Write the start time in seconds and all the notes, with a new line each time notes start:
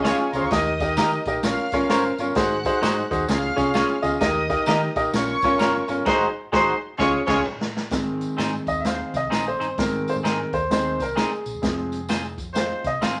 Already playing: C#2
0.03 G#3 C#4 F4 G#4 C#5 F5, snare, closed hi-hat, tambourine
0.13 G4 G5
0.18 G#4 G#5
0.31 C2 C#4 F4 G#4 A#4 C5 C#5 A#5 C6, closed hi-hat, tambourine
0.41 D2 C#5 C#6
0.50 D#2 D#4 G4 A#4 D#5 D#6, kick, snare, closed hi-hat, tambourine
0.80 D#4 G4 A#4 D#5, kick, closed hi-hat, tambourine
0.97 D#3 D#4 G4 A#4 D#5, snare, closed hi-hat, tambourine
1.25 A#1 D#4 G4 A#4 D#5, kick, closed hi-hat, tambourine
1.43 A#1 C#4 F4 A#4 C#5 F5 F6, snare, closed hi-hat, tambourine
1.58 muted fingered electric bass stroke
1.72 G#1 C#4 F4 A#4 C#5, kick, snare, closed hi-hat, tambourine
1.89 G1 C#4 F4 A#4 C5 C#5, snare, closed hi-hat, tambourine
2.18 G1 C#4 F4 A#4 C#5, closed hi-hat, tambourine
2.35 G#1 D#4 F#4 G#4 C5 F#5 F#6, kick, snare, closed hi-hat, tambourine
2.65 D#4 F#4 G#4 C5, kick, closed hi-hat, tambourine
2.81 G#2 G#3 D#4 F#4 G#4 C5, snare, closed hi-hat, tambourine
3.11 D#2 D#4 F#4 G#4 C5, kick, closed hi-hat, tambourine
3.28 C#2 C#4 F4 G#4 C#5 F5 F6, snare, closed hi-hat, tambourine
3.56 C2 C#4 F4 G#4 C#5, kick, snare, closed hi-hat, tambourine
3.74 C#4 F4 G#4 C#5, snare, closed hi-hat, tambourine
4.02 C#2 C#4 F4 G#4 D#5, closed hi-hat, tambourine
4.11 D2
4.20 D#2 D#4 G4 A#4 D#5 D#6, kick, snare, closed hi-hat, tambourine
4.49 D#4 G4 A#4 D#5, kick, closed hi-hat, tambourine
4.66 D#3 D#4 G4 A#4 D#5, snare, closed hi-hat, tambourine
4.96 A#1 D#4 G4 A#4 D#5, kick, closed hi-hat, tambourine
5.13 A#1 C#4 F4 A#4 C#5 C#6, snare, closed hi-hat, tambourine
5.42 G#1 C#4 F4 A#4 C#5, kick, snare, closed hi-hat, tambourine
5.59 G1 C#4 F4 A#4 C#5, snare, closed hi-hat, tambourine
5.88 G1 C#4 F4 A#4 C#5, closed hi-hat, tambourine
6.05 G#1 G#3 D#4 F#4 G#4 C5 C6, kick, snare, crash
6.52 G#1 G#3 D#4 F#4 G#4 C5 C6, kick, snare
6.98 C#2 G#3 C#4 F4 G#4 C#5 C#6, kick, snare
7.25 C#2 G#3 C#4 F4 G#4 C#5 C#6, kick, snare, crash
7.45 mid tom
7.61 snare
7.77 snare
7.90 G#1 D#3 G#3 C4, kick, snare, closed hi-hat, tambourine
8.21 closed hi-hat, tambourine
8.37 G#2 C4 D#4 G#4 C5, snare, closed hi-hat, tambourine
8.67 D#2 D#5, kick, closed hi-hat, tambourine
8.81 E5, closed hi-hat
8.85 G#3 C4 D#4 C5 F5, snare, tambourine
9.14 C2 D#5, kick, snare, closed hi-hat, tambourine
9.30 A#1 C4 D#4 G#4 C5, snare, closed hi-hat, tambourine
9.48 C5
9.59 G1 C4 D#4 G#4 C5, closed hi-hat, tambourine
9.78 G#1 D#3 G#3 C4 A#4, kick, snare, closed hi-hat, tambourine
10.08 C5, closed hi-hat, tambourine
10.15 G#2
10.23 G#2 C4 D#4 G#4 A#4 C5, snare, closed hi-hat, tambourine
10.53 D#2 C5, kick, closed hi-hat, tambourine
10.71 D#3 G#3 C4 D#4 C5, snare, closed hi-hat, tambourine
11.00 C2 A#4 C5, kick, snare, closed hi-hat, tambourine
11.16 C4 D#4 G#4 C5, snare, closed hi-hat, tambourine
11.46 A#1, closed hi-hat, tambourine
11.54 E1
11.62 F1 F3 G#3 C4, kick, snare, closed hi-hat, tambourine
11.92 closed hi-hat, tambourine
12.09 C4 F4 G#4 C5, snare, closed hi-hat, tambourine
12.38 F2, kick, closed hi-hat, tambourine
12.53 G#3 C4 F4 C5, snare, closed hi-hat, tambourine
12.84 C2 D#5, kick, snare, closed hi-hat, tambourine
13.02 G#1 C4 F4 G#4 C5 F5, snare, closed hi-hat, tambourine